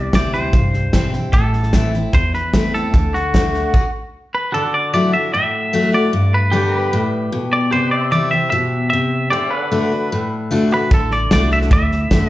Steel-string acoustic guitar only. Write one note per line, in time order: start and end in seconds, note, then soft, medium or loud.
0.00 0.50 C3 medium
0.14 0.52 E3 medium
0.14 0.52 G3 medium
0.14 0.52 C4 medium
0.14 0.53 E4 loud
0.54 1.30 G2 medium
0.94 1.13 E3 medium
0.94 1.13 G3 medium
0.94 1.13 C4 medium
0.94 1.13 E4 loud
1.14 1.34 C4 soft
1.14 1.33 E4 medium
1.34 2.10 A2 medium
1.73 1.93 E3 medium
1.73 1.93 A3 medium
1.73 1.93 C4 medium
1.73 1.94 E4 loud
1.95 2.14 C4 soft
1.95 2.13 E4 medium
2.14 2.90 E2 medium
2.54 2.92 E3 medium
2.54 2.92 A3 medium
2.54 2.92 C4 medium
2.54 2.93 E4 medium
2.94 3.34 D3 medium
3.35 3.72 D3 medium
3.35 3.73 A3 medium
3.35 3.73 D4 medium
3.35 3.73 F#4 medium
4.54 5.30 D3 medium
4.93 5.13 F#3 medium
4.93 5.13 A3 medium
4.93 5.13 E4 medium
4.93 5.13 F#4 medium
5.14 5.33 E4 soft
5.14 5.33 F#4 medium
5.34 6.10 A2 medium
5.73 5.92 F#3 medium
5.73 5.93 A3 loud
5.73 5.93 E4 loud
5.73 5.91 F#4 medium
5.92 6.13 E4 medium
5.92 6.12 F#4 medium
6.13 6.89 G2 medium
6.52 6.91 D3 medium
6.52 6.91 G3 medium
6.52 6.91 B3 medium
6.52 6.91 G4 loud
6.93 7.31 A2 medium
7.32 7.71 B2 loud
7.72 8.48 C3 medium
8.12 8.31 E3 medium
8.12 8.31 G3 medium
8.12 8.32 C4 medium
8.12 8.31 E4 medium
8.32 8.52 C4 medium
8.32 8.52 E4 medium
8.52 8.90 B2 loud
8.93 9.31 C3 medium
9.33 9.70 D3 medium
9.71 9.91 D3 medium
9.71 9.91 A3 medium
9.71 9.91 D4 medium
9.71 9.91 F#4 loud
9.92 10.12 D4 soft
9.92 10.11 F#4 medium
10.12 10.88 A2 medium
10.51 10.70 D3 medium
10.51 10.71 A3 loud
10.51 10.71 D4 loud
10.51 10.70 F#4 loud
10.71 10.91 D4 soft
10.71 10.91 F#4 medium
10.91 11.30 D3 medium
11.31 11.69 D3 medium
11.31 11.70 A3 medium
11.31 11.70 D4 medium
11.31 11.70 F#4 loud
11.71 12.29 A2 loud
12.11 12.29 D3 medium
12.11 12.29 A3 medium
12.11 12.29 D4 loud
12.11 12.29 F#4 loud